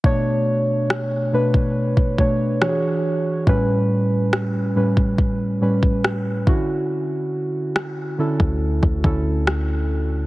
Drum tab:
SD |----r-------r---|----r-------r---|----r-------r---|
BD |o------o-oo-----|o------oo--o--o-|-------o-oo-----|